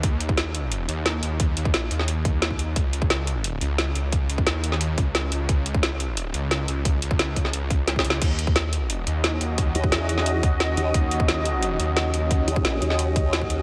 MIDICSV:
0, 0, Header, 1, 5, 480
1, 0, Start_track
1, 0, Tempo, 340909
1, 49, Time_signature, 4, 2, 24, 8
1, 19180, End_track
2, 0, Start_track
2, 0, Title_t, "Ambient pad"
2, 0, Program_c, 0, 92
2, 11569, Note_on_c, 0, 61, 82
2, 11570, Note_on_c, 0, 66, 73
2, 11570, Note_on_c, 0, 75, 89
2, 19180, Note_off_c, 0, 61, 0
2, 19180, Note_off_c, 0, 66, 0
2, 19180, Note_off_c, 0, 75, 0
2, 19180, End_track
3, 0, Start_track
3, 0, Title_t, "Wobble bass"
3, 0, Program_c, 1, 39
3, 13729, Note_on_c, 1, 39, 96
3, 13949, Note_off_c, 1, 39, 0
3, 13969, Note_on_c, 1, 40, 95
3, 14670, Note_off_c, 1, 40, 0
3, 15169, Note_on_c, 1, 39, 101
3, 15389, Note_off_c, 1, 39, 0
3, 17568, Note_on_c, 1, 39, 101
3, 17789, Note_off_c, 1, 39, 0
3, 17809, Note_on_c, 1, 34, 92
3, 18029, Note_off_c, 1, 34, 0
3, 18049, Note_on_c, 1, 39, 101
3, 19180, Note_off_c, 1, 39, 0
3, 19180, End_track
4, 0, Start_track
4, 0, Title_t, "Detuned saw bass"
4, 0, Program_c, 2, 39
4, 48, Note_on_c, 2, 39, 96
4, 1229, Note_off_c, 2, 39, 0
4, 1249, Note_on_c, 2, 39, 97
4, 1709, Note_off_c, 2, 39, 0
4, 1728, Note_on_c, 2, 39, 98
4, 2189, Note_off_c, 2, 39, 0
4, 2209, Note_on_c, 2, 39, 98
4, 2430, Note_off_c, 2, 39, 0
4, 2449, Note_on_c, 2, 34, 98
4, 2669, Note_off_c, 2, 34, 0
4, 2689, Note_on_c, 2, 39, 97
4, 3869, Note_off_c, 2, 39, 0
4, 3888, Note_on_c, 2, 37, 95
4, 5069, Note_off_c, 2, 37, 0
4, 5089, Note_on_c, 2, 37, 94
4, 5550, Note_off_c, 2, 37, 0
4, 5568, Note_on_c, 2, 37, 96
4, 6029, Note_off_c, 2, 37, 0
4, 6049, Note_on_c, 2, 37, 96
4, 6269, Note_off_c, 2, 37, 0
4, 6288, Note_on_c, 2, 39, 99
4, 6989, Note_off_c, 2, 39, 0
4, 7008, Note_on_c, 2, 37, 96
4, 7469, Note_off_c, 2, 37, 0
4, 7488, Note_on_c, 2, 37, 99
4, 7709, Note_off_c, 2, 37, 0
4, 7729, Note_on_c, 2, 37, 93
4, 8909, Note_off_c, 2, 37, 0
4, 8929, Note_on_c, 2, 37, 95
4, 9390, Note_off_c, 2, 37, 0
4, 9409, Note_on_c, 2, 37, 96
4, 9870, Note_off_c, 2, 37, 0
4, 9890, Note_on_c, 2, 37, 101
4, 10110, Note_off_c, 2, 37, 0
4, 10130, Note_on_c, 2, 37, 94
4, 11310, Note_off_c, 2, 37, 0
4, 11329, Note_on_c, 2, 37, 97
4, 11550, Note_off_c, 2, 37, 0
4, 11568, Note_on_c, 2, 39, 94
4, 12749, Note_off_c, 2, 39, 0
4, 12768, Note_on_c, 2, 39, 98
4, 13229, Note_off_c, 2, 39, 0
4, 13249, Note_on_c, 2, 39, 98
4, 13709, Note_off_c, 2, 39, 0
4, 14688, Note_on_c, 2, 39, 94
4, 15149, Note_off_c, 2, 39, 0
4, 15408, Note_on_c, 2, 39, 97
4, 16589, Note_off_c, 2, 39, 0
4, 16608, Note_on_c, 2, 39, 98
4, 17069, Note_off_c, 2, 39, 0
4, 17088, Note_on_c, 2, 39, 98
4, 17549, Note_off_c, 2, 39, 0
4, 19180, End_track
5, 0, Start_track
5, 0, Title_t, "Drums"
5, 48, Note_on_c, 9, 36, 123
5, 48, Note_on_c, 9, 42, 101
5, 189, Note_off_c, 9, 36, 0
5, 189, Note_off_c, 9, 42, 0
5, 288, Note_on_c, 9, 42, 68
5, 408, Note_on_c, 9, 36, 118
5, 429, Note_off_c, 9, 42, 0
5, 528, Note_on_c, 9, 38, 127
5, 528, Note_on_c, 9, 42, 100
5, 549, Note_off_c, 9, 36, 0
5, 669, Note_off_c, 9, 38, 0
5, 669, Note_off_c, 9, 42, 0
5, 768, Note_on_c, 9, 42, 67
5, 909, Note_off_c, 9, 42, 0
5, 1008, Note_on_c, 9, 42, 94
5, 1149, Note_off_c, 9, 42, 0
5, 1248, Note_on_c, 9, 42, 68
5, 1389, Note_off_c, 9, 42, 0
5, 1488, Note_on_c, 9, 38, 124
5, 1488, Note_on_c, 9, 42, 96
5, 1629, Note_off_c, 9, 38, 0
5, 1629, Note_off_c, 9, 42, 0
5, 1728, Note_on_c, 9, 42, 72
5, 1869, Note_off_c, 9, 42, 0
5, 1968, Note_on_c, 9, 36, 120
5, 1968, Note_on_c, 9, 42, 96
5, 2108, Note_off_c, 9, 42, 0
5, 2109, Note_off_c, 9, 36, 0
5, 2208, Note_on_c, 9, 42, 66
5, 2328, Note_on_c, 9, 36, 109
5, 2349, Note_off_c, 9, 42, 0
5, 2448, Note_on_c, 9, 38, 127
5, 2448, Note_on_c, 9, 42, 93
5, 2469, Note_off_c, 9, 36, 0
5, 2589, Note_off_c, 9, 38, 0
5, 2589, Note_off_c, 9, 42, 0
5, 2688, Note_on_c, 9, 42, 65
5, 2809, Note_on_c, 9, 38, 38
5, 2829, Note_off_c, 9, 42, 0
5, 2928, Note_on_c, 9, 42, 97
5, 2949, Note_off_c, 9, 38, 0
5, 3069, Note_off_c, 9, 42, 0
5, 3168, Note_on_c, 9, 36, 115
5, 3169, Note_on_c, 9, 42, 67
5, 3309, Note_off_c, 9, 36, 0
5, 3310, Note_off_c, 9, 42, 0
5, 3408, Note_on_c, 9, 38, 123
5, 3408, Note_on_c, 9, 42, 92
5, 3528, Note_on_c, 9, 36, 63
5, 3549, Note_off_c, 9, 38, 0
5, 3549, Note_off_c, 9, 42, 0
5, 3649, Note_on_c, 9, 42, 67
5, 3669, Note_off_c, 9, 36, 0
5, 3789, Note_off_c, 9, 42, 0
5, 3888, Note_on_c, 9, 36, 120
5, 3888, Note_on_c, 9, 42, 92
5, 4029, Note_off_c, 9, 36, 0
5, 4029, Note_off_c, 9, 42, 0
5, 4128, Note_on_c, 9, 42, 64
5, 4248, Note_on_c, 9, 36, 113
5, 4269, Note_off_c, 9, 42, 0
5, 4368, Note_on_c, 9, 38, 121
5, 4368, Note_on_c, 9, 42, 90
5, 4389, Note_off_c, 9, 36, 0
5, 4509, Note_off_c, 9, 38, 0
5, 4509, Note_off_c, 9, 42, 0
5, 4608, Note_on_c, 9, 42, 64
5, 4749, Note_off_c, 9, 42, 0
5, 4848, Note_on_c, 9, 42, 93
5, 4989, Note_off_c, 9, 42, 0
5, 5088, Note_on_c, 9, 42, 65
5, 5229, Note_off_c, 9, 42, 0
5, 5328, Note_on_c, 9, 38, 116
5, 5328, Note_on_c, 9, 42, 88
5, 5469, Note_off_c, 9, 38, 0
5, 5469, Note_off_c, 9, 42, 0
5, 5568, Note_on_c, 9, 42, 66
5, 5709, Note_off_c, 9, 42, 0
5, 5808, Note_on_c, 9, 36, 113
5, 5808, Note_on_c, 9, 42, 95
5, 5949, Note_off_c, 9, 36, 0
5, 5949, Note_off_c, 9, 42, 0
5, 6048, Note_on_c, 9, 42, 66
5, 6168, Note_on_c, 9, 36, 105
5, 6189, Note_off_c, 9, 42, 0
5, 6288, Note_on_c, 9, 38, 115
5, 6288, Note_on_c, 9, 42, 92
5, 6309, Note_off_c, 9, 36, 0
5, 6429, Note_off_c, 9, 38, 0
5, 6429, Note_off_c, 9, 42, 0
5, 6528, Note_on_c, 9, 42, 66
5, 6648, Note_on_c, 9, 38, 38
5, 6669, Note_off_c, 9, 42, 0
5, 6769, Note_on_c, 9, 42, 89
5, 6789, Note_off_c, 9, 38, 0
5, 6909, Note_off_c, 9, 42, 0
5, 7008, Note_on_c, 9, 42, 64
5, 7009, Note_on_c, 9, 36, 103
5, 7149, Note_off_c, 9, 36, 0
5, 7149, Note_off_c, 9, 42, 0
5, 7248, Note_on_c, 9, 38, 116
5, 7248, Note_on_c, 9, 42, 90
5, 7389, Note_off_c, 9, 38, 0
5, 7389, Note_off_c, 9, 42, 0
5, 7489, Note_on_c, 9, 42, 64
5, 7629, Note_off_c, 9, 42, 0
5, 7728, Note_on_c, 9, 42, 96
5, 7729, Note_on_c, 9, 36, 110
5, 7869, Note_off_c, 9, 36, 0
5, 7869, Note_off_c, 9, 42, 0
5, 7968, Note_on_c, 9, 42, 67
5, 8089, Note_on_c, 9, 36, 102
5, 8109, Note_off_c, 9, 42, 0
5, 8208, Note_on_c, 9, 38, 122
5, 8208, Note_on_c, 9, 42, 93
5, 8229, Note_off_c, 9, 36, 0
5, 8349, Note_off_c, 9, 38, 0
5, 8349, Note_off_c, 9, 42, 0
5, 8449, Note_on_c, 9, 42, 67
5, 8590, Note_off_c, 9, 42, 0
5, 8688, Note_on_c, 9, 42, 91
5, 8829, Note_off_c, 9, 42, 0
5, 8928, Note_on_c, 9, 42, 65
5, 9069, Note_off_c, 9, 42, 0
5, 9168, Note_on_c, 9, 38, 115
5, 9168, Note_on_c, 9, 42, 94
5, 9309, Note_off_c, 9, 38, 0
5, 9309, Note_off_c, 9, 42, 0
5, 9408, Note_on_c, 9, 42, 67
5, 9549, Note_off_c, 9, 42, 0
5, 9648, Note_on_c, 9, 42, 100
5, 9649, Note_on_c, 9, 36, 109
5, 9789, Note_off_c, 9, 36, 0
5, 9789, Note_off_c, 9, 42, 0
5, 9888, Note_on_c, 9, 42, 69
5, 10009, Note_on_c, 9, 36, 104
5, 10029, Note_off_c, 9, 42, 0
5, 10128, Note_on_c, 9, 38, 117
5, 10128, Note_on_c, 9, 42, 96
5, 10149, Note_off_c, 9, 36, 0
5, 10269, Note_off_c, 9, 38, 0
5, 10269, Note_off_c, 9, 42, 0
5, 10368, Note_on_c, 9, 42, 67
5, 10369, Note_on_c, 9, 36, 59
5, 10488, Note_on_c, 9, 38, 36
5, 10509, Note_off_c, 9, 42, 0
5, 10510, Note_off_c, 9, 36, 0
5, 10608, Note_on_c, 9, 42, 96
5, 10629, Note_off_c, 9, 38, 0
5, 10749, Note_off_c, 9, 42, 0
5, 10849, Note_on_c, 9, 36, 108
5, 10849, Note_on_c, 9, 42, 66
5, 10989, Note_off_c, 9, 36, 0
5, 10989, Note_off_c, 9, 42, 0
5, 11088, Note_on_c, 9, 38, 70
5, 11088, Note_on_c, 9, 42, 97
5, 11209, Note_on_c, 9, 36, 61
5, 11229, Note_off_c, 9, 38, 0
5, 11229, Note_off_c, 9, 42, 0
5, 11248, Note_on_c, 9, 38, 84
5, 11328, Note_on_c, 9, 42, 69
5, 11349, Note_off_c, 9, 36, 0
5, 11389, Note_off_c, 9, 38, 0
5, 11408, Note_on_c, 9, 38, 96
5, 11469, Note_off_c, 9, 42, 0
5, 11549, Note_off_c, 9, 38, 0
5, 11568, Note_on_c, 9, 42, 104
5, 11568, Note_on_c, 9, 49, 79
5, 11569, Note_on_c, 9, 36, 120
5, 11709, Note_off_c, 9, 36, 0
5, 11709, Note_off_c, 9, 42, 0
5, 11709, Note_off_c, 9, 49, 0
5, 11808, Note_on_c, 9, 42, 70
5, 11929, Note_on_c, 9, 36, 110
5, 11949, Note_off_c, 9, 42, 0
5, 12049, Note_on_c, 9, 38, 124
5, 12049, Note_on_c, 9, 42, 97
5, 12070, Note_off_c, 9, 36, 0
5, 12189, Note_off_c, 9, 38, 0
5, 12189, Note_off_c, 9, 42, 0
5, 12288, Note_on_c, 9, 42, 69
5, 12429, Note_off_c, 9, 42, 0
5, 12528, Note_on_c, 9, 42, 99
5, 12669, Note_off_c, 9, 42, 0
5, 12769, Note_on_c, 9, 42, 70
5, 12909, Note_off_c, 9, 42, 0
5, 13009, Note_on_c, 9, 38, 121
5, 13009, Note_on_c, 9, 42, 97
5, 13149, Note_off_c, 9, 38, 0
5, 13149, Note_off_c, 9, 42, 0
5, 13248, Note_on_c, 9, 42, 72
5, 13389, Note_off_c, 9, 42, 0
5, 13488, Note_on_c, 9, 36, 125
5, 13488, Note_on_c, 9, 42, 100
5, 13629, Note_off_c, 9, 36, 0
5, 13629, Note_off_c, 9, 42, 0
5, 13728, Note_on_c, 9, 42, 69
5, 13849, Note_on_c, 9, 36, 115
5, 13869, Note_off_c, 9, 42, 0
5, 13968, Note_on_c, 9, 38, 127
5, 13968, Note_on_c, 9, 42, 104
5, 13989, Note_off_c, 9, 36, 0
5, 14109, Note_off_c, 9, 38, 0
5, 14109, Note_off_c, 9, 42, 0
5, 14209, Note_on_c, 9, 42, 70
5, 14329, Note_on_c, 9, 38, 40
5, 14349, Note_off_c, 9, 42, 0
5, 14448, Note_on_c, 9, 42, 95
5, 14469, Note_off_c, 9, 38, 0
5, 14589, Note_off_c, 9, 42, 0
5, 14688, Note_on_c, 9, 36, 113
5, 14688, Note_on_c, 9, 42, 69
5, 14829, Note_off_c, 9, 36, 0
5, 14829, Note_off_c, 9, 42, 0
5, 14928, Note_on_c, 9, 38, 126
5, 14928, Note_on_c, 9, 42, 99
5, 15069, Note_off_c, 9, 38, 0
5, 15069, Note_off_c, 9, 42, 0
5, 15168, Note_on_c, 9, 42, 73
5, 15309, Note_off_c, 9, 42, 0
5, 15408, Note_on_c, 9, 36, 126
5, 15408, Note_on_c, 9, 42, 100
5, 15549, Note_off_c, 9, 36, 0
5, 15549, Note_off_c, 9, 42, 0
5, 15648, Note_on_c, 9, 42, 69
5, 15768, Note_on_c, 9, 36, 118
5, 15789, Note_off_c, 9, 42, 0
5, 15888, Note_on_c, 9, 38, 127
5, 15888, Note_on_c, 9, 42, 98
5, 15909, Note_off_c, 9, 36, 0
5, 16029, Note_off_c, 9, 38, 0
5, 16029, Note_off_c, 9, 42, 0
5, 16128, Note_on_c, 9, 42, 72
5, 16269, Note_off_c, 9, 42, 0
5, 16368, Note_on_c, 9, 42, 98
5, 16509, Note_off_c, 9, 42, 0
5, 16609, Note_on_c, 9, 42, 68
5, 16749, Note_off_c, 9, 42, 0
5, 16848, Note_on_c, 9, 38, 126
5, 16848, Note_on_c, 9, 42, 97
5, 16989, Note_off_c, 9, 38, 0
5, 16989, Note_off_c, 9, 42, 0
5, 17088, Note_on_c, 9, 42, 70
5, 17229, Note_off_c, 9, 42, 0
5, 17328, Note_on_c, 9, 36, 127
5, 17329, Note_on_c, 9, 42, 98
5, 17469, Note_off_c, 9, 36, 0
5, 17469, Note_off_c, 9, 42, 0
5, 17568, Note_on_c, 9, 42, 67
5, 17688, Note_on_c, 9, 36, 116
5, 17709, Note_off_c, 9, 42, 0
5, 17808, Note_on_c, 9, 38, 127
5, 17808, Note_on_c, 9, 42, 93
5, 17829, Note_off_c, 9, 36, 0
5, 17949, Note_off_c, 9, 38, 0
5, 17949, Note_off_c, 9, 42, 0
5, 18048, Note_on_c, 9, 42, 64
5, 18168, Note_on_c, 9, 38, 40
5, 18189, Note_off_c, 9, 42, 0
5, 18288, Note_on_c, 9, 42, 92
5, 18309, Note_off_c, 9, 38, 0
5, 18429, Note_off_c, 9, 42, 0
5, 18528, Note_on_c, 9, 36, 116
5, 18528, Note_on_c, 9, 42, 68
5, 18669, Note_off_c, 9, 36, 0
5, 18669, Note_off_c, 9, 42, 0
5, 18769, Note_on_c, 9, 38, 127
5, 18769, Note_on_c, 9, 42, 93
5, 18888, Note_on_c, 9, 36, 64
5, 18909, Note_off_c, 9, 38, 0
5, 18909, Note_off_c, 9, 42, 0
5, 19008, Note_on_c, 9, 42, 69
5, 19029, Note_off_c, 9, 36, 0
5, 19149, Note_off_c, 9, 42, 0
5, 19180, End_track
0, 0, End_of_file